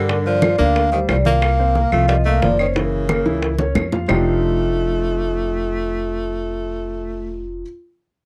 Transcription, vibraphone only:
0.00 0.27 A#4 loud
0.26 0.60 D5 loud
0.59 0.94 F5 loud
0.93 1.00 C5 medium
1.09 1.17 D5 medium
1.26 1.92 F5 loud
1.93 2.08 F5 medium
2.09 2.17 D#5 medium
2.26 2.43 F5 medium
2.42 2.60 D5 loud
2.60 2.67 C5 medium
2.76 3.72 A#4 medium
4.10 7.63 F4 medium

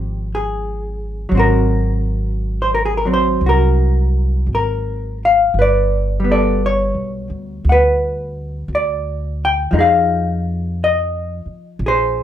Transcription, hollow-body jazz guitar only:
0.00 1.29 F3 soft
0.00 1.30 C4 soft
0.00 1.33 D#4 soft
0.00 0.27 G4 medium
0.35 1.38 G#4 medium
1.29 3.04 F#3 soft
1.35 3.06 C4 soft
1.35 3.39 F#4 soft
1.39 2.61 A#4 medium
2.62 2.72 C5 medium
2.75 2.84 A#4 medium
2.85 2.95 G#4 medium
2.97 3.07 A#4 medium
3.05 5.53 F#3 soft
3.05 5.54 C4 soft
3.13 3.46 C5 medium
3.46 5.52 F#4 soft
3.46 4.47 A#4 medium
4.55 5.17 A#4 medium
5.25 5.58 F5 medium
5.59 7.62 B4 soft
5.59 6.30 D5 medium
6.20 9.70 G3 soft
6.24 9.72 B3 soft
6.31 6.65 A4 soft
6.31 6.64 D5 medium
6.66 7.69 C#5 medium
7.69 8.68 B4 medium
7.69 9.44 F#5 soft
8.75 9.42 D5 medium
9.45 9.74 G5 medium
9.71 11.79 F3 soft
9.71 9.78 G#3 soft
9.71 11.81 D#4 soft
9.79 11.79 G#4 soft
9.79 10.83 F5 medium
10.84 11.87 D#5 medium
11.86 12.23 G#4 medium
11.86 12.23 C5 medium

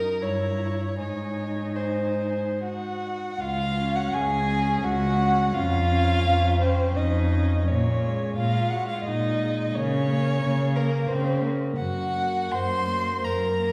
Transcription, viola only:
0.00 0.18 D#4 medium
0.23 0.95 E4 medium
0.99 3.17 D#4 medium
3.78 4.47 C#4 medium
4.48 5.18 C#4 medium
5.21 5.55 C#4 medium
5.55 5.90 C#4 medium
5.92 6.60 C#4 medium
6.61 7.31 C#4 medium
7.33 7.67 C#4 medium
8.04 8.71 G#3 medium
8.72 9.39 G#3 medium
9.41 9.74 G#3 medium
9.77 10.09 A#3 medium
10.10 10.75 A#3 medium
10.78 11.43 A#3 medium
11.44 11.77 A#3 medium
12.17 12.89 A#3 medium
12.91 13.59 A#3 medium
13.61 13.72 A#3 medium

